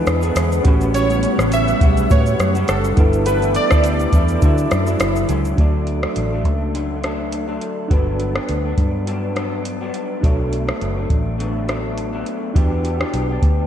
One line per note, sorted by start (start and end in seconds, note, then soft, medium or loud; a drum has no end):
0.00 0.61 D3 medium
0.00 0.22 E3 medium
0.00 0.63 G#3 medium
0.00 0.23 B3 medium
0.00 4.38 B3 medium
0.00 0.22 D4 medium
0.00 0.60 D4 medium
0.00 0.61 E4 medium
0.00 0.61 F#4 medium
0.00 0.21 G#4 medium
0.00 0.61 G#4 medium
0.00 0.61 B4 medium
0.00 0.62 B4 medium
0.06 0.30 E2 medium
0.06 cross-stick medium
0.06 closed hi-hat soft
0.06 shaker medium
0.06 shaker soft
0.22 0.66 B3 medium
0.22 0.65 D4 medium
0.22 0.65 G#4 medium
0.22 shaker soft
0.22 shaker medium
0.35 0.59 E2 medium
0.35 cross-stick medium
0.35 closed hi-hat loud
0.35 shaker medium
0.52 shaker medium
0.63 1.24 A1 loud
0.63 0.92 A2 medium
0.63 2.95 C#3 medium
0.63 2.95 G3 medium
0.63 0.93 G3 medium
0.63 2.06 C#4 medium
0.63 0.94 C#4 medium
0.63 2.07 F#4 medium
0.63 2.08 G4 medium
0.63 2.95 F#5 loud
0.63 kick loud
0.63 closed hi-hat medium
0.63 shaker medium
0.67 0.94 F#4 medium
0.67 2.08 B4 loud
0.81 shaker medium
0.81 shaker soft
0.93 1.39 A2 medium
0.93 1.38 G3 medium
0.93 1.38 C#4 medium
0.93 1.37 F#4 medium
0.93 1.54 C#5 loud
0.93 closed hi-hat medium
0.93 shaker medium
0.96 shaker medium
1.10 shaker soft
1.12 shaker soft
1.23 closed hi-hat medium
1.23 shaker medium
1.38 1.72 A1 medium
1.38 1.80 A2 medium
1.38 1.81 G3 medium
1.38 1.81 C#4 medium
1.38 1.81 F#4 medium
1.38 cross-stick medium
1.38 shaker medium
1.52 closed hi-hat medium
1.52 shaker medium
1.53 2.12 E5 loud
1.53 shaker medium
1.68 shaker soft
1.68 shaker medium
1.81 2.04 B1 medium
1.81 2.08 A2 medium
1.81 2.09 G3 medium
1.81 2.10 C#4 medium
1.81 2.10 F#4 medium
1.81 kick medium
1.81 closed hi-hat medium
1.81 shaker medium
1.97 shaker medium
1.97 shaker soft
2.09 2.55 A2 medium
2.09 2.34 A2 loud
2.09 2.55 G3 medium
2.09 2.96 C#4 soft
2.09 2.55 C#4 medium
2.09 2.97 F#4 soft
2.09 2.54 F#4 medium
2.09 2.97 G4 soft
2.09 2.98 B4 medium
2.09 2.70 C#5 medium
2.09 kick medium
2.09 closed hi-hat medium
2.09 shaker medium
2.26 shaker medium
2.26 shaker soft
2.39 2.62 F#2 medium
2.39 cross-stick medium
2.39 closed hi-hat soft
2.39 shaker soft
2.39 shaker medium
2.55 2.95 G3 soft
2.55 2.97 C#4 soft
2.55 2.97 F#4 medium
2.55 shaker medium
2.55 shaker soft
2.68 2.92 F#1 loud
2.68 3.28 A4 medium
2.68 cross-stick medium
2.68 closed hi-hat medium
2.68 shaker medium
2.84 shaker medium
2.95 3.56 G1 loud
2.95 4.41 E3 medium
2.95 3.25 G3 medium
2.95 4.41 A3 medium
2.95 3.26 B3 medium
2.95 4.38 D4 medium
2.95 4.39 E4 medium
2.95 3.26 E4 medium
2.95 4.41 G4 medium
2.95 4.40 A4 medium
2.95 kick loud
2.95 closed hi-hat medium
2.95 shaker medium
2.99 3.27 A4 medium
2.99 4.41 B4 medium
3.13 shaker soft
3.13 shaker medium
3.26 3.71 G3 medium
3.26 3.71 B3 medium
3.26 3.70 E4 medium
3.26 3.53 B4 medium
3.26 closed hi-hat medium
3.26 shaker medium
3.28 3.70 A4 medium
3.28 shaker medium
3.42 shaker medium
3.44 shaker soft
3.55 5.26 D5 medium
3.55 closed hi-hat medium
3.55 shaker medium
3.71 4.05 D2 medium
3.71 4.12 G3 medium
3.71 4.12 B3 medium
3.71 4.13 E4 medium
3.71 4.13 A4 medium
3.71 kick medium
3.71 cross-stick loud
3.71 shaker medium
3.84 closed hi-hat medium
3.84 shaker medium
3.85 shaker medium
3.99 shaker soft
3.99 shaker medium
4.13 4.36 E2 loud
4.13 4.42 G3 medium
4.13 4.42 B3 medium
4.13 4.43 E4 medium
4.13 4.43 A4 medium
4.13 kick medium
4.13 closed hi-hat medium
4.13 shaker medium
4.28 shaker medium
4.28 shaker soft
4.40 5.57 D3 medium
4.40 4.87 D3 medium
4.40 4.66 D3 medium
4.40 5.57 F#3 medium
4.40 4.87 F#3 medium
4.40 5.57 D4 medium
4.40 5.55 E4 medium
4.40 5.57 E4 medium
4.40 5.56 F#4 medium
4.40 5.57 A4 medium
4.40 kick medium
4.40 closed hi-hat medium
4.40 shaker medium
4.45 4.85 E4 medium
4.45 5.57 E5 medium
4.58 shaker medium
4.58 shaker soft
4.71 4.95 F#2 medium
4.71 cross-stick medium
4.71 closed hi-hat soft
4.71 shaker soft
4.71 shaker medium
4.86 5.28 F#3 soft
4.86 5.29 E4 medium
4.86 shaker soft
4.86 shaker medium
5.00 5.23 F#1 medium
5.00 cross-stick loud
5.00 closed hi-hat medium
5.00 shaker medium
5.16 shaker medium
5.28 5.52 C#2 medium
5.28 5.56 D3 medium
5.28 5.57 F#3 medium
5.28 5.58 C#4 medium
5.28 5.59 E4 medium
5.28 closed hi-hat medium
5.28 shaker medium
5.28 shaker soft
5.45 shaker soft
5.45 shaker medium
5.56 6.05 D2 loud
5.56 6.02 D3 medium
5.56 6.02 F#3 medium
5.56 6.02 A3 medium
5.56 7.85 D4 medium
5.56 6.01 D4 medium
5.56 7.86 F#4 medium
5.56 7.87 A4 medium
5.56 kick loud
5.56 closed hi-hat medium
5.61 7.88 D5 medium
5.87 closed hi-hat soft
6.02 6.32 D3 medium
6.02 6.32 F#3 medium
6.02 6.32 A3 medium
6.02 6.31 D4 medium
6.02 cross-stick medium
6.16 6.45 A1 medium
6.16 closed hi-hat medium
6.32 6.74 F#3 soft
6.32 6.74 A3 soft
6.32 6.74 D4 medium
6.45 7.57 C#2 medium
6.45 kick medium
6.45 closed hi-hat medium
6.74 7.03 D3 medium
6.74 7.02 F#3 medium
6.74 7.03 A3 medium
6.74 7.04 D4 medium
6.74 closed hi-hat medium
7.04 7.47 F#3 medium
7.04 7.47 A3 medium
7.04 7.46 D4 medium
7.04 cross-stick medium
7.04 closed hi-hat soft
7.32 closed hi-hat medium
7.48 7.91 D3 medium
7.48 7.89 F#3 medium
7.48 7.90 A3 medium
7.48 7.90 D4 medium
7.61 closed hi-hat medium
7.88 8.37 G1 loud
7.88 8.35 G2 medium
7.88 8.34 F#3 medium
7.88 8.34 B3 medium
7.88 10.18 D4 medium
7.88 8.33 D4 medium
7.88 10.19 F#4 medium
7.88 10.20 A4 medium
7.88 kick loud
7.88 closed hi-hat medium
7.93 10.20 B4 medium
8.20 closed hi-hat soft
8.35 8.65 G2 medium
8.35 8.65 F#3 medium
8.35 8.64 B3 medium
8.35 8.63 D4 medium
8.35 cross-stick medium
8.49 8.72 D2 medium
8.49 closed hi-hat medium
8.64 9.06 F#3 soft
8.64 9.06 B3 soft
8.64 9.07 D4 medium
8.78 9.90 G2 medium
8.78 kick medium
8.78 closed hi-hat medium
9.06 9.34 G2 medium
9.06 9.35 F#3 medium
9.06 9.35 B3 medium
9.06 9.36 D4 medium
9.06 closed hi-hat medium
9.35 9.81 G2 medium
9.35 9.81 F#3 medium
9.35 9.80 B3 medium
9.35 9.79 D4 medium
9.35 cross-stick medium
9.35 closed hi-hat soft
9.65 closed hi-hat medium
9.81 10.24 G2 medium
9.81 10.22 F#3 medium
9.81 10.23 B3 medium
9.81 10.23 D4 medium
9.94 closed hi-hat medium
10.21 10.70 B1 loud
10.21 10.67 B2 medium
10.21 10.67 F#3 medium
10.21 10.66 A3 medium
10.21 12.51 D4 medium
10.21 10.66 D4 medium
10.21 12.52 F#4 medium
10.21 12.52 A4 medium
10.21 kick medium
10.21 closed hi-hat medium
10.26 12.53 C#5 medium
10.53 closed hi-hat soft
10.67 10.97 B2 medium
10.67 10.97 F#3 medium
10.67 10.96 A3 medium
10.67 10.95 D4 medium
10.67 cross-stick medium
10.81 11.05 F#1 medium
10.81 closed hi-hat medium
10.96 11.38 F#3 soft
10.96 11.38 A3 medium
10.96 11.39 D4 medium
11.10 12.23 A1 medium
11.10 kick medium
11.10 closed hi-hat soft
11.38 11.66 B2 medium
11.38 11.67 F#3 medium
11.38 11.68 A3 medium
11.38 11.68 D4 medium
11.38 closed hi-hat medium
11.68 12.13 B2 medium
11.68 12.13 F#3 medium
11.68 12.12 A3 medium
11.68 12.11 D4 medium
11.68 cross-stick medium
11.68 closed hi-hat soft
11.98 closed hi-hat medium
12.13 12.56 B2 medium
12.13 12.54 F#3 medium
12.13 12.55 A3 medium
12.13 12.55 D4 medium
12.26 closed hi-hat medium
12.54 13.02 E2 medium
12.54 13.00 E3 medium
12.54 13.00 B3 medium
12.54 13.67 D4 medium
12.54 13.00 D4 medium
12.54 13.67 F#4 medium
12.54 12.99 G4 medium
12.54 13.67 G4 medium
12.54 kick loud
12.54 closed hi-hat medium
12.59 13.67 B4 medium
12.85 closed hi-hat medium
13.00 13.30 E3 medium
13.00 13.30 B3 medium
13.00 13.29 D4 medium
13.00 13.28 G4 medium
13.00 cross-stick medium
13.14 13.37 B1 medium
13.14 closed hi-hat medium
13.29 13.67 B3 soft
13.29 13.67 D4 medium
13.29 13.67 G4 medium
13.42 13.67 D2 loud
13.42 kick medium
13.42 closed hi-hat medium